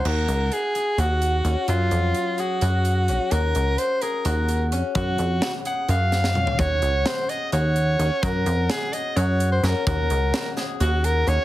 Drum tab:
CC |x-------------|--------------|--------------|--------------|
HH |--x-x-x-x-x-x-|x-x-x-x-x-x-x-|x-x-x-x-x-x-x-|x-x-x-x-x-x---|
SD |--------------|--------------|--------------|----o-----oo--|
T2 |--------------|--------------|--------------|------------o-|
FT |--------------|--------------|--------------|-------------o|
BD |--------------|--------------|--------------|o-------------|

CC |--------------|--------------|--------------|
HH |x-x-x-x-x-x-x-|x-x-x-x-x-x-x-|x-x-x-x-x-x-x-|
SD |----o---------|----o-------o-|----o-o-------|
T2 |--------------|--------------|--------------|
FT |--------------|--------------|--------------|
BD |o-------------|o-------------|o-------------|